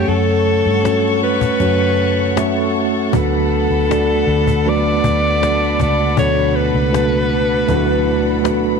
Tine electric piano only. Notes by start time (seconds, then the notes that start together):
Already playing: A3 C#4 C#5 F#5
0.83 A3 C#4 F#4 C#5
1.60 A3 C#4 F#4 C#5
2.36 A3 C#4 F#4 E5
3.13 D3 A3 D4 F#4 B4
3.89 A3 D4 F#4 D5
4.65 A3 D4 F#4 B4
5.41 A3 D4 F#4 D5
6.17 B2 A3 D4 F#4 A4
6.92 A3 D4 F#4 B4
7.67 A3 D4 E4 B4
7.75 F#4
8.42 A3 D4 F#4 B4